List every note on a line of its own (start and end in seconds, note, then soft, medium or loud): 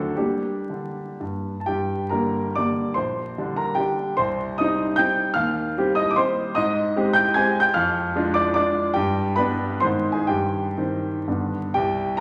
0.00 0.17 D2 medium
0.00 0.14 D3 soft
0.00 0.14 F#3 soft
0.00 0.15 C4 soft
0.00 0.14 D4 medium
0.00 0.14 F#4 medium
0.00 0.17 A4 medium
0.16 0.54 G3 soft
0.16 1.17 A#3 soft
0.16 1.17 D4 soft
0.16 1.20 G4 medium
0.70 1.05 D3 soft
1.20 1.54 G2 soft
1.60 1.68 A5 soft
1.66 2.10 G2 medium
1.66 2.08 G4 medium
1.66 2.11 G5 medium
2.09 2.52 D3 soft
2.09 2.52 G3 soft
2.09 2.52 A#3 medium
2.09 2.52 A#4 medium
2.09 2.55 A#5 medium
2.55 2.94 D3 soft
2.55 2.95 G3 soft
2.55 2.95 A#3 soft
2.55 2.95 D5 medium
2.55 2.97 D6 medium
2.94 3.36 A#1 medium
2.94 3.54 C5 medium
2.94 3.57 C6 medium
3.38 3.75 D3 medium
3.38 3.75 G3 medium
3.38 3.75 D4 medium
3.56 3.77 A#4 medium
3.56 3.78 A#5 medium
3.75 4.14 D3 soft
3.75 4.14 G3 soft
3.75 4.14 D4 soft
3.75 4.14 G4 medium
3.75 4.17 G5 medium
4.17 4.58 C2 medium
4.17 4.56 C5 medium
4.17 4.59 C6 medium
4.58 4.96 G3 medium
4.58 4.96 C4 medium
4.58 4.96 D#4 medium
4.58 4.96 D#5 medium
4.58 4.99 D#6 medium
4.96 5.33 G3 medium
4.96 5.33 C4 medium
4.96 5.33 D#4 medium
4.96 5.34 G5 medium
4.96 5.36 G6 loud
5.34 5.75 D#2 medium
5.34 5.93 F5 medium
5.34 5.96 F6 loud
5.78 6.14 G3 medium
5.78 6.14 C4 medium
5.78 6.14 G4 medium
5.95 6.09 D#5 medium
5.95 6.10 D#6 loud
6.11 6.17 D6 medium
6.16 6.53 G3 medium
6.16 6.53 C4 medium
6.16 6.53 G4 medium
6.16 6.53 C5 medium
6.16 6.55 C6 loud
6.55 6.94 G#2 medium
6.55 7.11 D#5 medium
6.55 7.15 D#6 loud
6.97 7.32 G#3 medium
6.97 7.32 C4 medium
6.97 7.33 G4 medium
7.13 7.34 G5 medium
7.13 7.34 G6 loud
7.34 7.70 G#3 medium
7.34 7.71 C4 medium
7.34 7.71 G4 medium
7.34 7.59 G#5 loud
7.34 7.60 G#6 loud
7.60 7.73 G5 medium
7.60 7.73 G6 loud
7.74 8.14 F2 medium
7.74 8.32 F5 medium
7.74 8.36 F6 loud
8.16 8.52 G#3 medium
8.16 8.52 D4 medium
8.16 8.53 F4 medium
8.34 8.54 D5 medium
8.34 8.53 D6 loud
8.54 8.91 G#3 medium
8.54 8.92 D4 medium
8.54 8.92 F4 medium
8.54 8.92 D5 medium
8.54 8.94 D6 loud
8.94 9.36 G2 medium
8.94 9.34 G4 medium
8.94 9.36 G5 loud
9.36 9.79 G3 medium
9.36 9.79 B3 medium
9.36 9.80 D4 medium
9.36 9.79 B4 medium
9.36 9.82 B5 loud
9.80 10.28 G#2 medium
9.80 10.26 D#3 medium
9.80 10.26 C4 soft
9.80 10.11 C5 medium
9.80 10.13 C6 medium
10.12 10.29 G#4 medium
10.12 10.29 G#5 medium
10.27 10.77 G2 medium
10.27 11.23 G4 medium
10.27 11.27 G5 medium
10.78 11.23 D#3 medium
10.78 11.24 C4 medium
11.28 11.73 G2 medium
11.28 11.70 D3 soft
11.28 11.71 B3 soft
11.28 11.71 D4 soft
11.74 12.18 C2 medium
11.74 12.15 G4 medium
11.74 12.18 G5 loud
12.17 12.20 A#5 loud